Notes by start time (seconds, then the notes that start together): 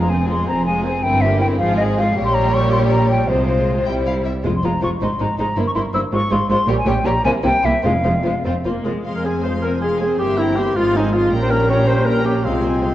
Already playing: F1 F2
0.00 A#5
0.09 C4 G#4 C5 G#5
0.28 G#3 F4 G#4 C6
0.48 F1 F2 C4 G#4 C5 A#5
0.66 G#3 F4 G#4 G#5
0.85 C4 G#4 C5 G#5
1.03 G1 G2 C4 E4 A#4 G5
1.21 A#3 G4 C5 E5
1.41 C4 E4 A#4 G5
1.58 G#1 G#2 F3 F4 G#4 F5
1.77 G#3 G#4 C5 D#5
1.98 F3 F4 G#4 F5
2.16 A#1 A#2 G3 G4 C#5
2.25 C6
2.34 A#5
2.54 C#6
2.72 C6
2.91 A#5
3.10 G5
3.28 C2 C3 G#3 F4 C5
3.86 C2 C3 G3 E4 G5
4.06 F5
4.25 E5
4.44 F1 F2 G#3 F4 C5
4.56 C6
4.63 F1 F2 G#3 F4 C5 A#5
4.82 F1 F2 G#3 F4 C5 C#6
5.01 G#1 G#2 G#3 D#4 C5 C6
5.20 G#1 G#2 G#3 D#4 C5 A#5
5.38 G#1 G#2 G#3 D#4 C5 A#5
5.57 G1 G2 A#3 E4 C5
5.67 C#6
5.75 G1 G2 A#3 E4 C5 C6
5.93 G1 G2 A#3 E4 C5 E6
6.12 G#1 G#2 G#3 F4 C5 C#6
6.30 G#1 G#2 G#3 F4 C5 C6
6.48 G#1 G#2 G#3 F4 C5 C6
6.67 A#1 A#2 G3 G4 C#5
6.78 G#5
6.86 A#1 A#2 G3 G4 C#5 G5
7.05 A#1 A#2 G3 G4 C#5 A#5
7.24 C2 C3 A#3 E4 C5 G#5
7.44 C2 C3 A#3 E4 C5 G5
7.63 C2 C3 A#3 E4 C5 E5
7.84 F1 F2 G#3 F4 C5 F5
8.04 F1 F2 G#3 F4 C5
8.24 F1 F2 G#3 F4 C5
8.45 F1 F2 C4 F4 C5
8.65 F1 F2 A#3 F4 C5
8.85 F1 F2 G#3 F4 C5
9.04 F1 F2 F3 G#3 C4 F5 C6
9.15 A#4
9.24 C4 G#4 C5 G#5
9.43 G#3 C5 F5 C6
9.62 C4 A#4 C5 G#5
9.81 G#3 G#4 F5 C6
10.00 C4 G#4 C5 G#5
10.18 G1 G2 E3 A#3 G4 E5 C6
10.37 C4 E4 G5 A#5
10.56 A#3 G4 E5 C6
10.75 G#1 G#2 F3 G#3 F4 F5 C6
10.95 C4 D#4 C5 G#5
11.13 G#3 F4 F5 C6
11.32 A#1 A#2 G3 A#3 C#4 G5 A#5
11.41 C5
11.50 C#4 A#4 G5 A#5
11.68 A#3 C#5 G5 A#5
11.87 C#4 C5 G5 A#5
12.05 A#3 A#4 G5 A#5
12.25 C#4 G4 G5 A#5
12.45 C2 C3 G#3 C4 F4 F5 C6
12.63 C4 C5 G#5
12.83 G#3 F5 C6